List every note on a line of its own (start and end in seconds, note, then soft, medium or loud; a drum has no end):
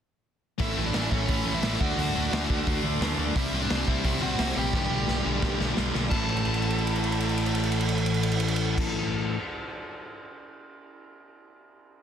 0.58 0.72 A1 medium
0.58 0.74 A2 medium
0.58 0.75 E3 medium
0.58 0.77 A3 medium
0.58 0.84 E4 medium
0.58 0.84 E5 medium
0.58 kick loud
0.58 open hi-hat medium
0.76 0.90 A1 medium
0.76 0.92 A2 medium
0.76 0.93 E3 medium
0.76 0.94 A3 medium
0.85 1.10 D4 medium
0.85 1.09 D5 medium
0.93 1.07 A1 medium
0.93 1.09 A2 medium
0.93 1.10 E3 medium
0.93 1.11 A3 medium
0.93 snare loud
0.93 open hi-hat medium
1.10 1.24 A1 medium
1.10 1.26 A2 medium
1.10 1.27 E3 medium
1.10 1.28 A3 loud
1.10 1.52 C#4 medium
1.10 1.56 C#5 medium
1.10 kick medium
1.27 1.41 A1 medium
1.27 1.43 A2 medium
1.27 1.44 E3 medium
1.27 1.44 A3 medium
1.27 kick loud
1.27 open hi-hat medium
1.44 1.58 A1 medium
1.44 1.60 A2 medium
1.44 1.61 E3 medium
1.44 1.62 A3 medium
1.54 1.79 E4 medium
1.54 1.80 E5 medium
1.62 1.75 A1 medium
1.62 1.79 A2 medium
1.62 1.79 E3 medium
1.62 1.79 A3 loud
1.62 snare loud
1.62 open hi-hat medium
1.79 1.93 D2 loud
1.79 1.95 D3 medium
1.79 1.96 A3 loud
1.79 1.96 D4 loud
1.79 2.80 F#4 medium
1.79 2.80 F#5 loud
1.79 kick loud
1.96 2.10 D2 medium
1.96 2.13 D3 loud
1.96 2.14 A3 medium
1.96 2.14 D4 loud
1.96 open hi-hat medium
2.14 2.28 D2 medium
2.14 2.30 D3 medium
2.14 2.31 A3 medium
2.14 2.31 D4 medium
2.31 2.45 D2 medium
2.31 2.47 D3 medium
2.31 2.48 A3 medium
2.31 2.48 D4 medium
2.31 snare loud
2.31 open hi-hat medium
2.49 2.62 D2 loud
2.49 2.65 D3 medium
2.49 2.66 A3 medium
2.49 2.66 D4 loud
2.49 kick medium
2.66 2.80 D2 medium
2.66 2.81 D3 medium
2.66 2.82 A3 medium
2.66 2.82 D4 medium
2.66 kick loud
2.66 open hi-hat medium
2.82 2.96 D2 medium
2.82 2.99 D3 medium
2.82 3.00 A3 medium
2.82 3.00 D4 loud
3.00 3.13 D2 medium
3.00 3.17 D3 medium
3.00 3.17 A3 medium
3.00 3.18 D4 medium
3.00 snare loud
3.00 open hi-hat medium
3.18 3.30 D2 medium
3.18 3.34 D3 medium
3.18 3.35 A3 medium
3.18 3.35 D4 loud
3.34 3.48 C2 loud
3.34 3.51 C3 medium
3.34 3.52 G3 medium
3.34 3.52 C4 medium
3.34 3.60 E4 medium
3.34 3.60 E5 medium
3.34 kick loud
3.34 open hi-hat medium
3.52 3.65 C2 medium
3.52 3.68 C3 medium
3.52 3.70 G3 medium
3.52 3.70 C4 medium
3.62 3.85 D4 medium
3.62 3.86 D5 medium
3.69 3.83 C2 medium
3.69 3.85 C3 medium
3.69 3.87 G3 medium
3.69 3.87 C4 medium
3.69 snare loud
3.69 open hi-hat medium
3.86 4.00 C2 medium
3.86 4.03 C3 medium
3.86 4.04 G3 loud
3.86 4.04 C4 loud
3.86 4.19 E4 medium
3.86 4.22 E5 loud
3.86 kick medium
4.04 4.17 C2 medium
4.04 4.20 C3 medium
4.04 4.20 G3 medium
4.04 4.21 C4 loud
4.04 kick loud
4.04 open hi-hat medium
4.21 4.34 C2 medium
4.21 4.38 C3 medium
4.21 4.38 G3 medium
4.21 4.39 C4 medium
4.21 4.53 F#4 medium
4.21 4.58 F#5 loud
4.39 4.52 C2 loud
4.39 4.55 C3 medium
4.39 4.56 G3 medium
4.39 4.57 C4 loud
4.39 snare loud
4.39 open hi-hat medium
4.56 4.69 A#1 loud
4.56 4.72 C3 medium
4.56 4.73 G3 medium
4.56 4.73 C4 medium
4.56 5.73 G4 medium
4.56 5.74 G5 loud
4.73 4.86 B1 medium
4.73 4.89 G2 medium
4.73 4.91 D3 medium
4.73 4.91 G3 medium
4.73 kick loud
4.73 snare medium
4.91 5.03 B1 medium
4.91 5.05 G2 medium
4.91 5.06 D3 medium
4.91 5.07 G3 medium
5.07 5.21 B1 medium
5.07 5.23 G2 medium
5.07 5.24 D3 medium
5.07 5.24 G3 medium
5.07 snare medium
5.24 5.38 B1 medium
5.24 5.40 G2 medium
5.24 5.41 D3 medium
5.24 5.41 G3 medium
5.41 5.55 B1 medium
5.41 5.57 G2 medium
5.41 5.57 D3 loud
5.41 5.58 G3 medium
5.41 kick loud
5.41 snare medium
5.58 5.72 B1 medium
5.58 5.74 G2 medium
5.58 5.74 D3 medium
5.58 5.75 G3 medium
5.58 snare medium
5.75 5.90 B1 medium
5.75 5.90 G2 medium
5.75 5.91 D3 medium
5.75 5.92 G3 medium
5.75 snare loud
5.92 6.07 B1 medium
5.92 6.09 G2 medium
5.92 6.08 D3 medium
5.92 6.10 G3 medium
5.92 snare medium
6.09 8.81 A1 loud
6.09 9.35 A2 medium
6.09 9.35 E3 loud
6.09 8.80 A5 medium
6.09 kick loud
6.09 crash medium
6.13 9.35 A3 medium
6.29 crash soft
6.37 ride soft
6.45 crash medium
6.54 ride medium
6.62 crash medium
6.70 ride medium
6.78 crash medium
6.87 ride medium
6.96 crash medium
7.04 ride medium
7.12 crash medium
7.20 ride medium
7.29 crash medium
7.37 ride medium
7.46 crash medium
7.55 ride medium
7.63 crash medium
7.72 ride medium
7.81 crash medium
7.89 ride medium
7.98 crash medium
8.06 ride medium
8.14 crash medium
8.23 ride medium
8.31 crash medium
8.40 ride medium
8.48 crash medium
8.56 ride medium
8.78 kick loud
8.78 crash loud